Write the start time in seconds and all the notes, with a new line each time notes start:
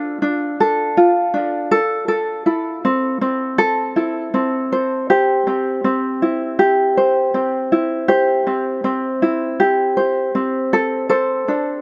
Already playing: D4 F4 A4
0.22 D4
0.60 A4
0.97 F4
1.34 D4
1.71 A4
2.08 A4
2.46 E4
2.85 C4
3.21 C4
3.58 A4
3.96 E4
4.34 C4
4.72 C5
5.10 G4 C5
5.47 C4
5.84 C4
6.22 E4
6.59 G4
6.97 C5
7.34 C4
7.72 E4
8.08 G4 C5
8.47 C4
8.84 C4
9.22 E4
9.60 G4
9.97 C5
10.35 C4
10.73 A4
11.09 A4 C5
11.48 D4